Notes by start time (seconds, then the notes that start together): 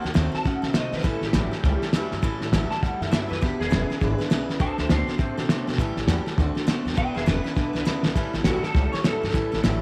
Already playing: D#3 A#3 F#5
0.02 D#2 C4 F#4 A4, snare
0.14 D#2 D#3 A3 C4 F#4 A4, snare, hi-hat pedal
0.32 C4 F#4 A4 A5, muted upright bass stroke, snare
0.44 A2 D#3 A3 C4 C#4 F#4 A4 F#5, kick, snare
0.62 C3 C4 F#4 A4 E5, snare
0.74 C3 D#3 A3 C4 F#4 A4 D#5, snare, hi-hat pedal
0.92 C3 C4 F#4 A4 B4, snare
0.98 snare
1.03 A1 A2 E3 G3 C#4 E4 A4, kick, snare
1.21 A1 G3 C#4 E4 G4 A4, snare
1.33 A1 A2 E3 F#3 G3 C#4 E4 A4, snare, hi-hat pedal
1.51 G3 C#4 E4 A4, muted upright bass stroke, snare
1.63 C#2 A2 G3 C#4 E4 A4, kick, snare
1.82 G3 C#4 E4 A4, muted upright bass stroke, snare
1.93 E2 A2 E3 F#3 G3 C#4 E4 A4, snare, hi-hat pedal
2.11 G2 G3 C#4 E4 A4, snare
2.22 A1 A2 E3 G3 C#4 E4 A4, kick, snare
2.40 A1 C#4 E4 A4, snare
2.45 G3
2.52 A1 A2 E3 F#3 G3 C#4 E4 A4, snare, hi-hat pedal
2.70 G3 C#4 E4 A4 A5, muted upright bass stroke, snare
2.81 E2 A2 G3 C#4 F#5, kick, snare
2.86 E4 A4
3.00 F#2 G3 C#4 E4 A4 E5, snare
3.11 G2 A2 E3 F#3 G3 C#4 E4 A4 E5, snare, hi-hat pedal
3.28 F#2 G3 C#4 E4 A4 B4, snare
3.41 E1 E2 B2 E3 G#3 D4 E4 G4 B4, kick, snare
3.60 E1 D4 E4 G#4 B4, snare
3.70 E1 E2 C#3 E3 G#3 D4 E4 B4, snare, hi-hat pedal
3.90 D4 E4 B4, muted upright bass stroke, snare
4.00 G#1 E2 D3 G#3 D4 E4 B4, kick, snare
4.18 D4 E4 B4, snare
4.30 B1 E2 C#3 E3 G#3 D4 E4 B4, snare, hi-hat pedal
4.49 C#2 D4 E4 B4, snare
4.59 D2 D3 A3 C4 F#4 A4 C5 A5, kick, snare
4.78 D2 C4 F#4 A4 C5 E5, snare
4.89 D2 D3 A3 B3 C4 F#4 A4 C5, snare, hi-hat pedal
5.07 C4 F#4 A4, snare
5.18 A2 D3 A3 C4 F#4 A4, kick, snare
5.37 B2 C4 F#4 A4, snare
5.49 D3 A3 B3 C4 F#4 A4, snare, hi-hat pedal
5.67 B2 C4 F#4 A4, snare
5.72 snare
5.78 A1 A2 E3 G3 C#4 G4 A4, kick, snare
5.96 A1 G3 C#4 G4 A4, snare
6.07 E2 A2 E3 F#3 G3 C#4 G4 A4, snare, hi-hat pedal
6.25 G3 C#4 G4 A4, muted upright bass stroke, snare
6.37 D2 D3 A3 C4 F#4, kick, snare
6.41 A4
6.55 C4 F#4 A4, muted upright bass stroke, snare
6.67 A2 D3 A3 B3 C4 F#4 A4, snare, hi-hat pedal
6.85 D#2 C4 F#4 A4, snare
6.93 E3 G#3, snare
6.97 E1 E2 B2 D4 E4 B4 G5, kick, snare
7.14 E1 D4 E4 G#4 B4 E5, snare
7.26 E1 E2 C#3 E3 G#3 D4 E4 B4, snare, hi-hat pedal
7.44 D4 E4 B4, muted upright bass stroke, snare
7.55 B1 E2 D3 G#3 D4 E4 B4, kick, snare
7.73 C#2 D4 E4 B4, snare
7.85 E2 C#3 E3 G#3 D4 E4 B4, snare, hi-hat pedal
8.04 C#2 D4 E4 B4, snare
8.15 A1 A2 E3 G3 C#4 E4 A4, kick, snare
8.33 A1 G3 C#4 E4 A4, snare
8.44 A1 A2 E3 F#3 G3 C#4 E4 F#4 A4, snare, hi-hat pedal
8.62 C#4 E4 A4, muted upright bass stroke, snare
8.67 G3
8.74 C#2 A2 G3 C#4 E4 A4, kick, snare
8.92 G3 C#4 E4 A4 C#5, snare
9.03 E2 A2 E3 F#3 G3 C#4 E4 A4, snare, hi-hat pedal
9.22 G2 G3 C#4 E4 A4, snare
9.29 A2, snare
9.33 A1 A2 E3 G3 C#4 E4 A4, kick, snare
9.52 A1 G3 C#4 E4 A4, snare
9.63 A1 A2 E3 F#3 G3 C#4 E4 A4, snare, hi-hat pedal